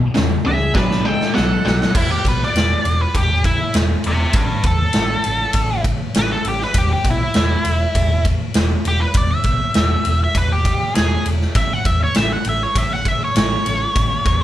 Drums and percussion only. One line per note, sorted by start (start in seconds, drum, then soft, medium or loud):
0.14 snare medium
0.14 open hi-hat soft
0.75 kick medium
0.75 snare medium
0.91 snare medium
1.21 snare medium
1.37 snare medium
1.67 snare medium
1.82 snare medium
1.95 kick loud
1.95 crash medium
2.25 kick medium
2.25 ride medium
2.42 snare soft
2.56 snare loud
2.56 ride medium
2.85 ride medium
3.15 kick medium
3.15 ride medium
3.44 kick medium
3.44 ride medium
3.74 snare loud
3.74 ride medium
4.04 ride medium
4.33 kick loud
4.33 ride medium
4.63 kick medium
4.63 ride medium
4.93 snare medium
4.93 ride medium
5.24 ride medium
5.53 kick medium
5.53 ride medium
5.84 kick medium
5.84 ride medium
6.14 snare loud
6.14 ride medium
6.45 ride medium
6.61 snare soft
6.74 kick medium
6.74 ride medium
7.05 kick medium
7.05 ride medium
7.34 snare loud
7.34 ride medium
7.65 ride medium
7.95 kick medium
7.95 ride medium
8.25 kick medium
8.25 ride medium
8.54 snare loud
8.54 ride medium
8.85 ride medium
9.14 kick loud
9.14 ride medium
9.44 kick medium
9.44 ride medium
9.74 snare loud
9.74 ride medium
10.05 ride medium
10.35 kick medium
10.35 ride medium
10.65 kick medium
10.65 ride medium
10.95 snare loud
10.95 ride loud
11.26 ride medium
11.41 snare soft
11.55 kick loud
11.55 ride medium
11.85 kick medium
11.85 ride medium
12.14 snare loud
12.14 ride medium
12.45 ride medium
12.76 kick medium
12.76 ride medium
13.05 kick medium
13.05 ride medium
13.36 snare loud
13.36 ride medium
13.66 ride medium
13.96 kick loud
13.96 ride medium
14.25 kick medium
14.25 ride medium